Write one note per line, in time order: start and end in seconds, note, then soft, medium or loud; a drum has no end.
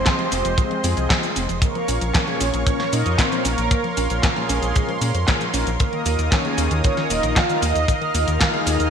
0.00 0.16 G#3 medium
0.00 1.58 G#3 medium
0.00 0.16 C4 medium
0.00 0.29 C4 medium
0.00 0.16 F4 medium
0.00 0.16 G#4 medium
0.00 0.28 C5 loud
0.00 1.58 C5 medium
0.00 1.60 D#5 medium
0.00 1.58 C6 medium
0.00 downlifter medium
0.06 0.12 F3 medium
0.06 kick loud
0.06 snare loud
0.06 clap loud
0.06 closed hi-hat medium
0.06 cabasa soft
0.19 0.28 F3 loud
0.19 0.55 G#3 loud
0.19 0.55 C4 medium
0.19 0.55 F4 medium
0.19 0.55 G4 loud
0.19 closed hi-hat soft
0.32 0.43 F1 loud
0.32 0.38 C4 loud
0.32 1.33 C4 medium
0.32 1.32 C5 loud
0.32 open hi-hat loud
0.32 cabasa medium
0.45 0.56 F1 medium
0.45 0.55 F3 loud
0.45 closed hi-hat medium
0.45 cabasa soft
0.58 0.64 F3 medium
0.58 0.81 G#3 medium
0.58 0.81 C4 medium
0.58 0.81 F4 medium
0.58 0.81 G#4 medium
0.58 kick loud
0.58 closed hi-hat medium
0.58 cabasa soft
0.71 0.81 F3 loud
0.71 closed hi-hat soft
0.84 0.95 F2 medium
0.84 1.20 G#3 medium
0.84 1.20 C4 medium
0.84 0.90 C4 loud
0.84 1.20 F4 medium
0.84 1.20 G#4 loud
0.84 open hi-hat loud
0.84 cabasa medium
0.97 1.08 C2 medium
0.97 1.07 F3 loud
0.97 closed hi-hat medium
0.97 cabasa soft
1.10 1.16 F3 medium
1.10 kick loud
1.10 snare loud
1.10 clap loud
1.10 closed hi-hat medium
1.10 cabasa soft
1.23 1.33 F3 loud
1.23 1.40 G#3 medium
1.23 1.40 C4 medium
1.23 1.40 F4 medium
1.23 1.40 G#4 medium
1.23 closed hi-hat soft
1.23 cabasa soft
1.36 1.47 F1 loud
1.36 1.42 C4 loud
1.36 open hi-hat loud
1.36 cabasa medium
1.49 1.60 F1 medium
1.49 1.59 F3 loud
1.49 closed hi-hat medium
1.49 cabasa soft
1.62 1.68 F3 medium
1.62 2.11 A#3 medium
1.62 5.76 A#4 medium
1.62 2.16 A#4 loud
1.62 5.76 C#5 medium
1.62 5.76 F5 medium
1.62 3.69 C#6 medium
1.62 kick loud
1.62 closed hi-hat medium
1.62 cabasa soft
1.75 1.85 F3 loud
1.75 closed hi-hat soft
1.88 1.99 A#1 loud
1.88 2.24 A#2 medium
1.88 2.24 A#3 medium
1.88 1.94 C#4 loud
1.88 2.24 C#4 medium
1.88 2.24 F4 medium
1.88 2.24 A#4 medium
1.88 open hi-hat loud
1.88 cabasa medium
2.01 2.12 A#1 medium
2.01 2.11 F3 loud
2.01 closed hi-hat medium
2.01 cabasa soft
2.14 2.20 F3 medium
2.14 2.64 C#4 medium
2.14 2.66 C#5 loud
2.14 kick loud
2.14 snare loud
2.14 clap loud
2.14 closed hi-hat medium
2.14 cabasa soft
2.28 2.64 A#2 loud
2.28 2.37 F3 loud
2.28 2.64 A#3 medium
2.28 2.64 C#4 medium
2.28 2.64 F4 medium
2.28 2.64 G#4 loud
2.28 closed hi-hat soft
2.41 2.51 A#1 loud
2.41 2.46 C#4 loud
2.41 open hi-hat loud
2.41 cabasa medium
2.54 2.65 A#1 medium
2.54 2.63 F3 loud
2.54 closed hi-hat medium
2.54 cabasa soft
2.67 2.90 A#2 medium
2.67 2.72 F3 medium
2.67 2.90 A#3 medium
2.67 2.90 C#4 medium
2.67 2.92 C#4 medium
2.67 2.90 F4 medium
2.67 2.90 A#4 medium
2.67 2.94 C#5 loud
2.67 kick loud
2.67 closed hi-hat medium
2.67 cabasa soft
2.80 2.89 F3 loud
2.80 snare soft
2.80 closed hi-hat soft
2.93 3.04 A#2 medium
2.93 3.29 A#2 medium
2.93 3.29 A#3 medium
2.93 2.99 C#4 loud
2.93 3.29 C#4 medium
2.93 3.18 D#4 medium
2.93 3.29 F4 medium
2.93 3.29 A#4 loud
2.93 3.20 D#5 loud
2.93 open hi-hat loud
2.93 cabasa medium
3.06 3.17 F2 medium
3.06 3.15 F3 loud
3.06 closed hi-hat medium
3.06 cabasa soft
3.19 3.44 C4 medium
3.19 3.43 C5 loud
3.19 kick loud
3.19 snare loud
3.19 clap loud
3.19 closed hi-hat medium
3.19 cabasa soft
3.32 3.49 A#2 medium
3.32 3.42 F3 loud
3.32 3.49 A#3 medium
3.32 3.49 C#4 medium
3.32 3.49 F4 medium
3.32 3.49 A#4 medium
3.32 closed hi-hat soft
3.32 cabasa soft
3.45 3.56 A#1 loud
3.45 4.20 A#3 medium
3.45 3.51 C#4 loud
3.45 4.19 A#4 loud
3.45 open hi-hat loud
3.45 cabasa medium
3.58 3.69 A#1 medium
3.58 3.68 F3 loud
3.58 closed hi-hat medium
3.58 cabasa soft
3.71 3.77 F3 medium
3.71 5.78 C6 loud
3.71 kick loud
3.71 closed hi-hat soft
3.71 cabasa soft
3.84 3.94 F3 loud
3.84 closed hi-hat soft
3.97 4.08 A#1 loud
3.97 4.33 A#2 medium
3.97 4.33 A#3 medium
3.97 4.03 C#4 loud
3.97 4.33 C#4 medium
3.97 4.33 F4 medium
3.97 4.33 A#4 medium
3.97 open hi-hat loud
3.97 cabasa medium
4.10 4.21 A#1 medium
4.10 4.20 F3 loud
4.10 closed hi-hat medium
4.10 cabasa soft
4.23 4.29 F3 medium
4.23 4.36 A#3 medium
4.23 4.35 A#4 medium
4.23 kick loud
4.23 snare loud
4.23 clap loud
4.23 closed hi-hat medium
4.23 cabasa soft
4.36 4.72 A#2 loud
4.36 4.46 F3 loud
4.36 4.72 A#3 medium
4.36 4.72 C#4 medium
4.36 4.72 F4 medium
4.36 4.72 G#4 loud
4.36 closed hi-hat soft
4.49 4.60 A#1 loud
4.49 5.24 G#3 medium
4.49 4.55 C#4 loud
4.49 5.24 G#4 medium
4.49 open hi-hat loud
4.49 cabasa medium
4.62 4.73 A#1 medium
4.62 4.72 F3 loud
4.62 closed hi-hat medium
4.62 cabasa soft
4.76 4.98 A#2 medium
4.76 4.81 F3 medium
4.76 4.98 A#3 medium
4.76 4.98 C#4 medium
4.76 4.98 F4 medium
4.76 4.98 A#4 medium
4.76 kick loud
4.76 closed hi-hat soft
4.76 cabasa soft
4.89 4.98 F3 loud
4.89 closed hi-hat soft
5.01 5.12 A#2 medium
5.01 5.07 C#4 loud
5.01 open hi-hat loud
5.01 cabasa medium
5.14 5.25 F2 medium
5.14 5.24 F3 loud
5.14 closed hi-hat medium
5.14 cabasa soft
5.28 5.44 A#2 loud
5.28 5.33 F3 medium
5.28 5.44 A#3 medium
5.28 5.44 C#4 medium
5.28 5.44 F4 medium
5.28 5.44 G#4 loud
5.28 kick loud
5.28 snare loud
5.28 clap loud
5.28 closed hi-hat medium
5.28 cabasa soft
5.41 5.50 F3 loud
5.41 closed hi-hat soft
5.41 cabasa soft
5.54 5.65 A#1 medium
5.54 5.70 D#3 loud
5.54 5.70 A#3 medium
5.54 5.59 C#4 loud
5.54 5.70 C#4 medium
5.54 5.70 F4 medium
5.54 5.70 A#4 loud
5.54 open hi-hat loud
5.54 cabasa medium
5.67 5.78 A#1 medium
5.67 5.76 F3 loud
5.67 closed hi-hat soft
5.67 cabasa soft
5.80 5.86 D#3 medium
5.80 6.29 A#3 medium
5.80 8.90 A#4 medium
5.80 6.34 A#4 loud
5.80 8.90 D#5 medium
5.80 8.90 F5 medium
5.80 7.86 D#6 medium
5.80 kick loud
5.80 closed hi-hat medium
5.80 cabasa soft
5.93 6.02 D#3 loud
5.93 closed hi-hat soft
6.06 6.17 D#2 loud
6.06 6.42 D#3 medium
6.06 6.42 A#3 medium
6.06 6.12 A#3 loud
6.06 6.42 D#4 medium
6.06 6.42 F4 medium
6.06 6.42 A#4 medium
6.06 open hi-hat loud
6.06 cabasa medium
6.18 6.30 D#2 medium
6.18 6.28 D#3 loud
6.18 closed hi-hat medium
6.18 cabasa soft
6.32 6.38 D#3 medium
6.32 6.81 C#4 medium
6.32 6.83 C#5 loud
6.32 kick loud
6.32 snare loud
6.32 clap loud
6.32 closed hi-hat medium
6.32 cabasa soft
6.45 6.55 D#3 loud
6.45 6.81 D#3 loud
6.45 6.81 A#3 medium
6.45 6.81 D#4 medium
6.45 6.81 F4 medium
6.45 6.81 G#4 loud
6.45 closed hi-hat soft
6.58 6.69 D#2 loud
6.58 6.64 A#3 loud
6.58 open hi-hat loud
6.58 cabasa medium
6.71 6.82 D#2 medium
6.71 6.81 D#3 loud
6.71 closed hi-hat medium
6.71 cabasa soft
6.84 6.90 D#3 medium
6.84 7.07 D#3 medium
6.84 7.07 A#3 medium
6.84 7.09 C#4 medium
6.84 7.07 D#4 medium
6.84 7.07 F4 medium
6.84 7.07 A#4 medium
6.84 7.11 C#5 loud
6.84 kick loud
6.84 closed hi-hat medium
6.84 cabasa soft
6.97 7.07 D#3 loud
6.97 snare soft
6.97 closed hi-hat soft
7.10 7.21 D#1 medium
7.10 7.46 D#3 medium
7.10 7.16 A#3 loud
7.10 7.46 A#3 medium
7.10 7.46 D#4 medium
7.10 7.35 D#4 medium
7.10 7.46 F4 medium
7.10 7.46 A#4 loud
7.10 7.37 D#5 loud
7.10 open hi-hat loud
7.10 cabasa medium
7.23 7.34 A#1 medium
7.23 7.33 D#3 loud
7.23 closed hi-hat medium
7.23 cabasa soft
7.36 7.42 D#3 medium
7.36 7.61 F4 medium
7.36 7.63 F5 loud
7.36 kick loud
7.36 snare loud
7.36 clap loud
7.36 closed hi-hat medium
7.36 cabasa soft
7.49 7.66 D#3 medium
7.49 7.59 D#3 loud
7.49 7.66 A#3 medium
7.49 7.66 D#4 medium
7.49 7.66 F4 medium
7.49 7.66 A#4 medium
7.49 closed hi-hat soft
7.49 cabasa soft
7.62 7.73 D#2 medium
7.62 7.68 A#3 loud
7.62 8.37 D#4 medium
7.62 8.43 D#5 loud
7.62 open hi-hat loud
7.62 cabasa medium
7.75 7.86 D#2 medium
7.75 7.85 D#3 loud
7.75 closed hi-hat medium
7.75 cabasa soft
7.88 7.94 D#3 medium
7.88 8.90 F6 medium
7.88 kick loud
7.88 closed hi-hat medium
7.88 cabasa soft
8.01 8.11 D#3 loud
8.01 closed hi-hat soft
8.14 8.25 D#2 loud
8.14 8.51 D#3 medium
8.14 8.20 A#3 loud
8.14 8.51 A#3 medium
8.14 8.51 D#4 medium
8.14 8.51 F4 medium
8.14 8.51 A#4 medium
8.14 open hi-hat loud
8.14 cabasa medium
8.27 8.39 D#2 medium
8.27 8.37 D#3 loud
8.27 closed hi-hat medium
8.27 cabasa soft
8.40 8.46 D#3 medium
8.40 8.65 F4 medium
8.40 8.65 F5 loud
8.40 kick loud
8.40 snare loud
8.40 clap loud
8.40 closed hi-hat medium
8.40 cabasa soft
8.54 8.63 D#3 loud
8.54 8.90 D#3 loud
8.54 8.90 A#3 medium
8.54 8.90 D#4 medium
8.54 8.90 F4 medium
8.54 8.90 G#4 loud
8.54 closed hi-hat soft
8.66 8.78 D#2 medium
8.66 8.72 A#3 loud
8.66 8.90 D#4 medium
8.66 8.90 D#5 loud
8.66 open hi-hat loud
8.66 cabasa medium
8.80 8.90 D#2 medium
8.80 8.89 D#3 loud
8.80 closed hi-hat medium
8.80 cabasa soft